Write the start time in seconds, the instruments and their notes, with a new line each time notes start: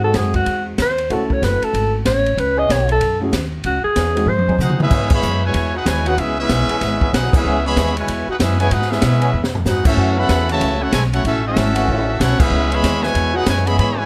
Already playing: upright bass G#2, grand piano G#3 C4 D#4 F#4 G#4
0.03 trombone section D#3 G#3 C4 F#4, alto saxophone A4
0.14 upright bass F#2, alto saxophone G#4, kick, snare, hi-hat pedal, ride
0.34 alto saxophone F#4, kick, ride
0.46 upright bass E2, kick, ride
0.78 upright bass D#2, alto saxophone C5, kick, snare, hi-hat pedal, ride
0.98 ride
1.09 upright bass C#2, trombone section E3 A3 C#4 F#4, grand piano A3 C#4 E4 F#4 A4, alto saxophone A4, kick, ride
1.30 alto saxophone C#5, kick
1.42 upright bass F#1, alto saxophone B4, kick, snare, hi-hat pedal, ride
1.62 alto saxophone A4, muted upright bass stroke, ride
1.73 upright bass G#1, kick, ride
2.05 upright bass A1, alto saxophone C#5, kick, snare, hi-hat pedal, ride
2.26 ride
2.37 upright bass C#2, alto saxophone B4, kick, ride
2.56 trombone section E3 B3 C#4 G#4, alto saxophone D#5
2.69 upright bass B1, alto saxophone C#5, kick, snare, hi-hat pedal, ride
2.89 alto saxophone A4, ride
3.01 upright bass F#2, kick, ride
3.20 grand piano A3 C#4 E4 F#4 G#4
3.33 upright bass D#2, kick, snare, hi-hat pedal, ride
3.64 upright bass C#2, alto saxophone F#4, kick, ride
3.84 alto saxophone G#4, muted upright bass stroke
3.96 upright bass E2, trombone section E3 B3 C#4 G#4, kick, snare, hi-hat pedal, ride
4.15 grand piano G#3 C4 D#4 F#4 G#4, ride
4.26 upright bass G#2, alto saxophone C5, high tom
4.36 upright bass F#2, high tom
4.47 upright bass D#2, trombone section F#3 C4 D#4 G#4, high tom
4.58 upright bass C3, trombone section C4 D#4 F#4, trumpet section D#4 G#4 C5 F#5, hi-hat pedal, mid tom
4.70 mid tom
4.80 trombone section G#3 B3 E4, trumpet section C#4 G#4 B4 E5, mid tom
4.90 upright bass G#2, trombone section E3 B3 C#4 G#4, kick, crash
5.10 trombone section E3 G#3 B3, trumpet section G#4 C#5 E5 B5, kick, crash
5.22 upright bass F#2, hi-hat pedal
5.44 trombone section B2 E3 G#3, trumpet section E4 B4 C#5 G#5
5.54 upright bass E2, kick, ride
5.76 trumpet section D#4 G#4 B4 F#5, trombone section F#4
5.86 upright bass D#2, trombone section B2 E3 G#3, trumpet section E4 B4 C#5 G#5, kick, snare, hi-hat pedal, ride
6.06 trombone section E3 B3 C#4 F#4, trumpet section D#4 G#4 B4 F#5, ride
6.17 upright bass C#2, trombone section G#3 B3 E4, trumpet section C#4 G#4 B4 E5, kick, ride
6.39 trombone section G#3 B3 E4, trumpet section C#4 G#4 B4 E5
6.49 upright bass B1, kick, snare, hi-hat pedal, ride
6.69 trombone section E3 B3 C#4 G#4, muted upright bass stroke, ride
6.81 upright bass G#1, kick, snare, ride
7.01 trombone section E3 B3 C#4 G#4, kick
7.13 upright bass B1, trumpet section D#4 G#4 B4 F#5, trombone section F#4, kick, snare, hi-hat pedal, ride
7.33 trombone section G#3 B3 E4, trumpet section C#4 G#4 B4 E5, muted upright bass stroke, kick, crash
7.45 upright bass C#2, trombone section E3 B3 C#4 G#4
7.66 trombone section E3 G#3 B3, trumpet section G#4 C#5 E5 B5
7.76 upright bass D#2, trombone section E3 B3 C#4 G#4, kick, snare, hi-hat pedal, ride
7.97 trombone section B2 E3 G#3, trumpet section E4 B4 C#5 G#5, ride
8.08 upright bass E2, kick, ride
8.28 trumpet section D#4 G#4 B4 F#5, trombone section F#4, muted upright bass stroke
8.39 upright bass F#2, trombone section G#3 B3 E4, trumpet section C#4 G#4 B4 E5, kick, snare, hi-hat pedal, ride
8.58 trombone section B2 E3 G#3 B3 C#4 G#4, trumpet section E4 B4 C#5 G#5, ride
8.71 upright bass G#2, trumpet section D#4 G#4 B4 F#5, trombone section F#4, kick, ride
8.82 snare
8.91 trombone section G#3 B3 E4, trumpet section C#4 G#4 B4 E5, snare
9.02 upright bass B2, kick, snare, hi-hat pedal, ride
9.21 trombone section E3 B3 C#4 G#4, ride
9.33 upright bass E2
9.44 snare
9.55 floor tom
9.65 upright bass G#2, trumpet section D#4 G#4 B4 F#5, trombone section F#4, snare, hi-hat pedal
9.85 trombone section A3 C#4 E4, trumpet section C#4 F#4 A4 E5, kick, crash
9.97 upright bass F#2, trombone section E3 A3 C#4 F#4
10.18 trombone section C#3 E3 B3, trumpet section A4 E5 F#5 B5
10.29 upright bass E2, kick, snare, hi-hat pedal, ride
10.49 trombone section C#3 E3 A3, trumpet section F#4 C#5 E5 A5, ride
10.61 upright bass C#2, kick, ride
10.81 trombone section A3 C#4 F#4, trumpet section E4 A4 C#5 F#5
10.92 upright bass B1, trombone section G#3, trumpet section E4 A4 C#5 G#5, kick, snare, hi-hat pedal, ride
11.13 trombone section A3 C#4 F#4, trumpet section E4 A4 C#5 F#5, ride
11.25 upright bass A1, trombone section A3 C#4 E4, trumpet section C#4 F#4 A4 E5, kick, ride
11.45 trombone section A3 C#4 E4, trumpet section C#4 F#4 A4 E5
11.56 upright bass G#1, kick, snare, hi-hat pedal, ride
11.75 trombone section E3 A3 C#4 F#4, ride
11.88 upright bass A1, kick
12.20 upright bass B1, trombone section A3 C#4 F#4, trumpet section E4 A4 C#5 F#5, kick, snare, hi-hat pedal, ride
12.39 trombone section G#3 B3 E4, trumpet section C#4 G#4 B4 E5, muted upright bass stroke, kick, crash
12.50 upright bass C#2
12.72 trombone section E3 G#3 B3, trumpet section G#4 C#5 E5 B5, ride
12.83 upright bass D#2, kick, snare, hi-hat pedal, ride
13.03 trombone section B2 E3 G#3, trumpet section E4 B4 C#5 G#5, snare
13.15 upright bass E2, kick, ride
13.34 trombone section E3 B3 C#4 F#4 G#4, trumpet section D#4 G#4 B4 F#5
13.46 upright bass F#2, trombone section B2 E3 G#3, trumpet section E4 B4 C#5 G#5, kick, snare, hi-hat pedal, ride
13.65 trombone section E3 G#3 B3 C#4 G#4, trumpet section G#4 C#5 E5 B5, ride
13.78 upright bass G#2, trombone section E3 G#3 B3, trumpet section G#4 C#5 E5 B5, kick, ride
13.98 trombone section B2 E3 G#3, trumpet section E4 B4 C#5 G#5